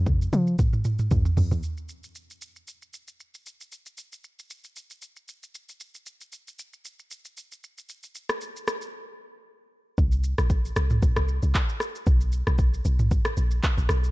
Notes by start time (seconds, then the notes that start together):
Already playing: F2
0.06 kick, mid tom, shaker
0.22 shaker
0.33 F3, mid tom, shaker
0.47 shaker
0.59 kick, mid tom, shaker
0.73 mid tom, shaker
0.85 mid tom, shaker
0.99 mid tom, shaker
1.11 G2, kick, floor tom, shaker
1.25 floor tom, shaker
1.37 F2, floor tom, open hi-hat, shaker
1.51 D#2, floor tom, shaker
1.63 shaker
1.77 shaker
1.89 shaker
2.04 shaker
2.15 shaker
2.31 shaker
2.42 shaker
2.56 shaker
2.68 shaker
2.82 shaker
2.94 shaker
3.08 shaker
3.20 shaker
3.35 shaker
3.46 shaker
3.61 shaker
3.72 shaker
3.86 shaker
3.98 shaker
4.12 shaker
4.24 shaker
4.39 shaker
4.50 shaker
4.64 shaker
4.76 shaker
4.91 shaker
5.02 shaker
5.16 shaker
5.29 shaker
5.43 shaker
5.55 shaker
5.69 shaker
5.80 shaker
5.95 shaker
6.06 shaker
6.21 shaker
6.32 shaker
6.48 shaker
6.59 shaker
6.73 shaker
6.85 shaker
6.99 shaker
7.11 shaker
7.25 shaker
7.37 shaker
7.52 shaker
7.64 shaker
7.78 shaker
7.89 shaker
8.03 shaker
8.15 shaker
8.29 cross-stick, shaker
8.41 shaker
8.57 shaker
8.68 cross-stick, shaker
8.82 shaker
9.98 C2, kick, shaker
10.12 shaker
10.24 shaker
10.38 A#1, cross-stick, shaker
10.50 kick, shaker
10.65 shaker
10.76 C2, cross-stick, shaker
10.90 mid tom, shaker
11.02 A#1, kick, shaker
11.16 C2, cross-stick, shaker
11.28 shaker
11.42 C2, shaker
11.55 kick, clap, shaker
11.69 shaker
11.80 cross-stick, shaker
11.95 shaker
12.07 B1, kick, shaker
12.21 shaker
12.32 shaker
12.47 B1, cross-stick, shaker
12.59 kick, shaker
12.74 shaker
12.85 B1, shaker
12.99 mid tom, shaker
13.11 kick, shaker
13.25 cross-stick, shaker
13.37 A#1, shaker
13.51 shaker
13.63 kick, clap, shaker
13.78 A#1, shaker
13.89 B1, cross-stick, shaker
14.04 shaker